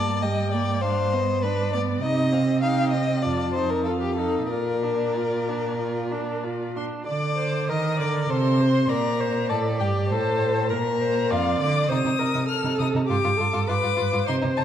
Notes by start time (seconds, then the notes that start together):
Already playing: G2 A#3 D5 A5
0.22 G3 D#5 G5
0.51 A#3 D5
0.81 D4 C5 F5
1.12 B3 D#5
1.42 D4 B4 D5
1.73 B3 D5
2.02 C3 D#4 D#5
2.33 C4 F5
2.62 D#4 F5 G5
2.91 C4 D#5
3.22 F2 F4 D5 A5
3.53 D#4 C5
3.69 A#4
3.85 F4 A4 F5
4.01 G4
4.15 D#4 A4
4.49 A#2 F4 A#4 D5
4.83 D4
5.15 F4
5.48 D4
5.79 F4
6.11 D4
6.44 F4
6.76 D4 C6
7.06 D3 D5 D6
7.38 C5
7.69 D#3 A#4 D#5 D#6
7.98 D3 D5 D6
8.29 C3 A4 C5 C6
8.61 C5
8.89 A#2 A#4 D5 A#5
9.20 C5
9.49 A2 A4 D5 A5
9.80 G2 G4 G5
10.08 A2 A4 C5 A5
10.70 A#2 A#4 A#5
11.00 C5
11.30 F2 F4 D5 F5
11.60 D3 D5 D6
11.88 C3 D#4 C5 D#6
12.04 C3 D#4
12.19 C3 D#4 A#4
12.34 C3 D#4
12.48 A4 F6
12.64 C3 D#4
12.79 C3 D#4 D#6
12.94 C3 D#4
13.07 G2 F4 G4 D6
13.24 G2 F4
13.37 G2 F4 A4
13.53 G2 F4
13.67 G2 F4 B4 D6
13.83 G2 F4
13.96 G2 F4
14.12 G2 F4
14.27 C3 D#4 C5 C6
14.42 C3 D#4
14.57 C3 D#4 A5